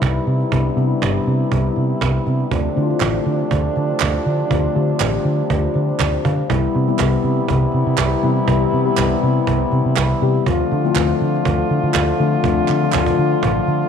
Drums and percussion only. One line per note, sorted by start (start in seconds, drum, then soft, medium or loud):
0.02 cajon bass loud
0.02 cajon slap loud
0.27 cajon slap soft
0.40 cajon slap soft
0.52 cajon bass loud
0.78 cajon slap soft
0.91 cajon slap soft
1.02 cajon bass loud
1.02 cajon slap loud
1.15 cajon slap soft
1.26 cajon slap soft
1.40 cajon slap soft
1.52 cajon bass loud
1.65 cajon slap soft
1.76 cajon slap soft
1.90 cajon slap soft
2.01 cajon bass loud
2.01 cajon slap loud
2.26 cajon slap soft
2.40 cajon slap soft
2.51 cajon bass loud
2.77 cajon slap soft
2.90 cajon slap soft
3.00 cajon bass loud
3.00 cajon slap loud
3.00 clap medium
3.14 cajon slap soft
3.25 cajon slap soft
3.39 cajon slap soft
3.51 cajon bass loud
3.64 cajon slap soft
3.76 cajon slap soft
3.90 cajon slap soft
4.00 cajon bass loud
4.00 cajon slap loud
4.00 clap loud
4.26 cajon slap soft
4.40 cajon slap soft
4.51 cajon bass loud
4.76 cajon slap soft
4.90 cajon slap soft
5.00 cajon bass loud
5.00 cajon slap loud
5.00 clap loud
5.13 cajon slap soft
5.25 cajon slap soft
5.39 cajon slap soft
5.50 cajon bass loud
5.63 cajon slap soft
5.74 cajon slap soft
5.89 cajon slap soft
6.00 cajon bass loud
6.00 cajon slap loud
6.00 clap loud
6.13 cajon slap soft
6.25 cajon bass medium
6.39 cajon slap soft
6.50 cajon bass loud
6.63 cajon slap soft
6.75 cajon slap soft
6.88 cajon slap soft
6.99 cajon bass loud
6.99 cajon slap loud
6.99 clap loud
7.11 cajon slap soft
7.22 cajon slap soft
7.37 cajon slap soft
7.49 cajon bass loud
7.72 cajon slap soft
7.87 cajon slap soft
7.98 cajon bass loud
7.98 cajon slap loud
7.98 clap loud
8.23 cajon slap soft
8.36 cajon slap soft
8.48 cajon bass loud
8.73 cajon slap soft
8.87 cajon slap soft
8.97 cajon bass loud
8.97 cajon slap loud
8.97 clap loud
9.10 cajon slap soft
9.22 cajon slap soft
9.36 cajon slap soft
9.47 cajon bass loud
9.71 cajon slap soft
9.86 cajon slap soft
9.96 cajon bass loud
9.96 cajon slap loud
9.96 clap loud
10.22 cajon slap soft
10.35 cajon slap soft
10.46 cajon bass loud
10.60 cajon slap soft
10.71 cajon slap soft
10.85 cajon slap soft
10.95 cajon bass loud
10.95 cajon slap loud
10.95 clap loud
11.09 cajon slap soft
11.21 cajon slap soft
11.35 cajon slap soft
11.45 cajon bass loud
11.70 cajon slap soft
11.84 cajon slap soft
11.94 cajon bass loud
11.94 cajon slap loud
11.94 clap loud
12.19 cajon slap soft
12.33 cajon slap soft
12.44 cajon bass loud
12.58 cajon slap soft
12.68 clap medium
12.83 cajon slap soft
12.92 cajon bass loud
12.92 cajon slap loud
12.92 clap loud
13.06 cajon bass medium
13.17 cajon slap soft
13.31 cajon slap soft
13.43 cajon bass loud
13.56 cajon slap soft
13.68 cajon slap soft
13.82 cajon slap soft